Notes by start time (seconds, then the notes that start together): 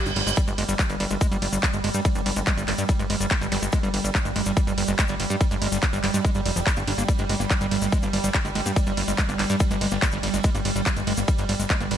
Already playing: G3, reverse cymbal
0.06 G1 G3, closed hi-hat, cabasa
0.16 G1 G3, open hi-hat, ride
0.27 G1 G#3, closed hi-hat, cabasa
0.37 G3, kick, closed hi-hat, ride, cabasa
0.48 G1 G#3, closed hi-hat, cabasa
0.58 G1 G#3, open hi-hat, ride
0.69 G1 G3, closed hi-hat, cabasa
0.79 G3, kick, clap, closed hi-hat, ride, cabasa
0.90 G1 G3, closed hi-hat, cabasa
1.00 G1 G3, open hi-hat, ride
1.10 G1 G#3, closed hi-hat, cabasa
1.21 G#3, kick, closed hi-hat, ride, cabasa
1.32 G1 G3, closed hi-hat, cabasa
1.42 G1 G3, open hi-hat, ride
1.53 G1 G3, closed hi-hat, cabasa
1.63 G3, kick, clap, closed hi-hat, ride, cabasa
1.73 G1 G#3, closed hi-hat, cabasa
1.84 G1 G#3, open hi-hat, ride
1.94 G2 G3, closed hi-hat, cabasa
2.05 G3, kick, closed hi-hat, ride, cabasa
2.15 G1 G3, closed hi-hat, cabasa
2.26 G1 G3, open hi-hat, ride
2.36 G1 G#3, closed hi-hat, cabasa
2.47 G#3, kick, clap, closed hi-hat, ride, cabasa
2.57 G1 G3, closed hi-hat, cabasa
2.68 G1 G3, clap, open hi-hat, ride
2.78 G2 G3, closed hi-hat, cabasa
2.89 G3, kick, closed hi-hat, ride, cabasa
2.99 G1 G#3, closed hi-hat, cabasa
3.10 G1 G#3, open hi-hat, ride
3.20 G1 G3, closed hi-hat, cabasa
3.30 G3, kick, clap, closed hi-hat, ride, cabasa
3.41 G1 G3, closed hi-hat, cabasa
3.52 G1 G3, open hi-hat, ride, zap
3.62 G1 G#3, closed hi-hat, cabasa
3.73 G#3, kick, closed hi-hat, ride, cabasa
3.83 G1 G3, closed hi-hat, cabasa
3.94 G1 G3, open hi-hat, ride
4.04 G1 G3, closed hi-hat, cabasa
4.15 G3, kick, clap, closed hi-hat, ride, cabasa
4.25 G1 G#3, closed hi-hat, cabasa
4.36 G1 G#3, open hi-hat, ride
4.46 G1 G3, closed hi-hat, cabasa
4.57 G3, kick, closed hi-hat, ride, cabasa
4.67 G1 G3, closed hi-hat, cabasa
4.78 G1 G3, open hi-hat, ride
4.88 G1 G#3, cabasa
4.98 G#3, kick, clap, closed hi-hat, ride, cabasa
5.08 G1 G3, closed hi-hat, cabasa
5.20 G1 G3, open hi-hat, ride
5.30 G2 G3, closed hi-hat, cabasa
5.41 G3, kick, closed hi-hat, ride, cabasa
5.51 G1 G#3, closed hi-hat, cabasa
5.62 G1 G#3, open hi-hat, ride
5.72 G1 G3, closed hi-hat, cabasa
5.82 G3, kick, clap, closed hi-hat, ride, cabasa
5.93 G1 G3, closed hi-hat, cabasa
6.04 G1 G3, clap, open hi-hat, ride
6.14 G2 G#3, closed hi-hat, cabasa
6.25 G#3, kick, closed hi-hat, ride, cabasa
6.35 G1 G3, closed hi-hat, cabasa
6.46 F1 G3, open hi-hat, ride
6.56 F1 F3, closed hi-hat, cabasa
6.67 D4, kick, clap, closed hi-hat, ride, cabasa
6.76 G1 A#3, closed hi-hat, cabasa
6.87 G1 D4, open hi-hat, ride
6.98 G1 A#3, closed hi-hat, cabasa
7.08 G3, kick, closed hi-hat, ride, cabasa
7.18 G1 G#3, closed hi-hat, cabasa
7.29 G1 G#3, open hi-hat, ride
7.40 G1 A#3, cabasa
7.50 G3, kick, clap, closed hi-hat, ride, cabasa
7.61 G1 G3, closed hi-hat, cabasa
7.71 G1 G3, open hi-hat, ride
7.82 G1 G#3, closed hi-hat, cabasa
7.92 G#3, kick, closed hi-hat, ride, cabasa
8.03 G1 A#3, closed hi-hat, cabasa
8.13 G1 G3, open hi-hat, ride
8.24 G1 G3, closed hi-hat, cabasa
8.34 G3, kick, clap, closed hi-hat, ride, cabasa
8.45 G1 G#3, closed hi-hat, cabasa
8.55 G1 G#3, open hi-hat, ride
8.66 G2 A#3, closed hi-hat, cabasa
8.76 G3, kick, closed hi-hat, ride, cabasa
8.87 G1 G3, closed hi-hat, cabasa
8.97 G1 G3, open hi-hat, ride
9.08 G1 G#3, closed hi-hat, cabasa
9.18 G#3, kick, clap, closed hi-hat, ride, cabasa
9.29 G1 A#3, closed hi-hat, cabasa
9.39 G1 G3, clap, open hi-hat, ride
9.50 G2 G3, closed hi-hat, cabasa
9.60 G3, kick, closed hi-hat, ride, cabasa
9.71 G1 G#3, closed hi-hat, cabasa
9.81 G1 G#3, open hi-hat, ride
9.91 G1 A#3, cabasa
10.02 G3, kick, clap, closed hi-hat, ride, cabasa
10.12 G1 G3, closed hi-hat, cabasa
10.23 G1 G3, open hi-hat, ride
10.34 G1 G#3, closed hi-hat, cabasa
10.44 G#3, kick, closed hi-hat, ride, cabasa
10.55 G1 A#3, closed hi-hat, cabasa
10.65 G1 G3, open hi-hat, ride
10.76 G1 G3, closed hi-hat, cabasa
10.86 G3, kick, clap, closed hi-hat, ride, cabasa
10.96 G1 G#3, closed hi-hat, cabasa
11.07 G1 G#3, open hi-hat, ride
11.17 G1 A#3, closed hi-hat, cabasa
11.28 G3, kick, closed hi-hat, ride, cabasa
11.38 G1 G3, closed hi-hat, cabasa
11.49 G1 G3, open hi-hat, ride
11.59 G1 G#3, closed hi-hat, cabasa
11.70 G#3, kick, clap, closed hi-hat, ride, cabasa
11.80 G1 A#3, closed hi-hat, cabasa
11.91 G1 G3, open hi-hat, ride